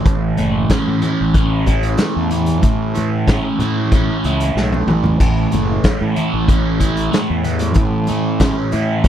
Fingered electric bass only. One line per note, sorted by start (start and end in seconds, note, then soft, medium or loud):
0.06 0.31 A1 medium
0.39 0.64 F#1 medium
0.88 1.00 A2 medium
1.21 1.95 A1 medium
2.16 2.63 E2 medium
2.63 3.38 A2 medium
3.59 4.09 A2 medium
4.24 4.53 C#2 medium
4.55 4.85 B1 medium
4.87 5.17 A1 medium
5.20 5.45 A1 medium
5.53 5.78 F#1 medium
6.01 6.14 A2 medium
6.33 7.08 A1 medium
7.30 7.76 E2 medium
7.76 8.51 A2 medium
8.73 9.08 A2 medium